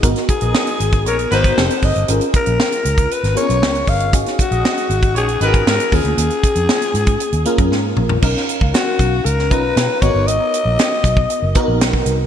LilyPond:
<<
  \new Staff \with { instrumentName = "Alto saxophone" } { \time 4/4 \key gis \dorian \tempo 4 = 117 r8 gis'4. ais'8 bis'4 ees''8 | r8 ais'4. b'8 cis''4 eis''8 | r8 fis'4. gis'8 ais'8 ais'8 gis'8~ | gis'2. r4 |
r4 fis'4 ais'8 b'4 cis''8 | dis''2. r4 | }
  \new Staff \with { instrumentName = "FM electric piano" } { \time 4/4 \key gis \dorian <b dis' fis' ais'>4. r4 <b dis' fis' ais'>8 <c' ees' g' a'>4 | <cis' eis' gis' ais'>4. r4 <b cis' eis' gis' ais'>4. | <cis' dis' fis' gis'>4. r4 <cis' dis' fis' g' gis'>4 <ais cis' eis' gis'>8~ | <ais cis' eis' gis'>4 r4. <ais cis' eis' ais'>4. |
<cis' dis' ais' eis''>4. r4 <cis' dis' eis' ais''>4 <b dis' fis' ais'>8~ | <b dis' fis' ais'>4 r4. <b dis' fis' ais'>4. | }
  \new Staff \with { instrumentName = "Horn section" } { \time 4/4 \key gis \dorian r8. <b dis' ais' dis''>8. r8 <cis' ais' cis''>16 r16 <fis b dis' b'>8 r4 | r1 | r8. <gis dis' fis' dis''>8. r8 <gis cis' fis' cis''>16 r16 <gis b fis' b'>8 r4 | r1 |
r1 | r1 | }
  \new Staff \with { instrumentName = "Fingered electric bass" } { \clef bass \time 4/4 \key gis \dorian gis,,16 r8 ais,,16 r8 gis,,8 ais,,8 gis,,8 f,,16 r16 g,,16 g,,16 | gis,,16 r8 ais,,16 r8 cis,8 r16 gis,,16 r16 b,,16 cis,8 g,,8 | gis,,16 r8 ais,,16 r8 gis,,8 ais,,8 gis,,8 gis,16 r16 dis,16 d,16 | dis,16 r8 eis,16 r8 gis,8 r16 dis,16 r16 fis,16 gis,8 ais,,8 |
b,,16 r8 cis,16 r8 b,,8 cis,8 b,,8 b,16 r16 gis,,16 g,,16 | gis,,16 r8 ais,,16 r8 b,,8 r16 fis,,16 r16 ais,,16 b,,8 bis,,8 | }
  \new DrumStaff \with { instrumentName = "Drums" } \drummode { \time 4/4 <hh bd>16 <hh sn>16 <hh bd>16 hh16 sn16 hh16 hh16 <hh bd>16 hh16 hh16 hh16 <hh bd>16 sn16 hh16 <hho bd>16 hh16 | hh16 hh16 <hh bd>16 hh16 sn16 hh16 hh16 <hh bd>16 hh16 <hh sn>16 hh16 hh16 sn16 hh16 <hho bd>16 hh16 | <hh bd>16 <hh sn>16 <hh bd>16 hh16 sn16 hh16 hh16 <hh bd>16 hh16 hh16 hh16 <hh bd>16 sn16 hh16 <hho bd>16 hh16 | hh16 hh16 <hh bd>16 hh16 sn16 hh16 hh16 <hh bd>16 hh16 hh16 hh16 <hh bd>16 sn8 toml16 tomfh16 |
<cymc bd>16 sn16 hh16 bd16 <hh sn>8 <hh bd>8 hh16 sn16 <hh bd>8 <hh sn>8 <hh bd>8 | hh8 hh8 <hh sn>8 <hh bd>16 bd16 hh8 <hh bd>8 <hh sn>16 bd16 hh8 | }
>>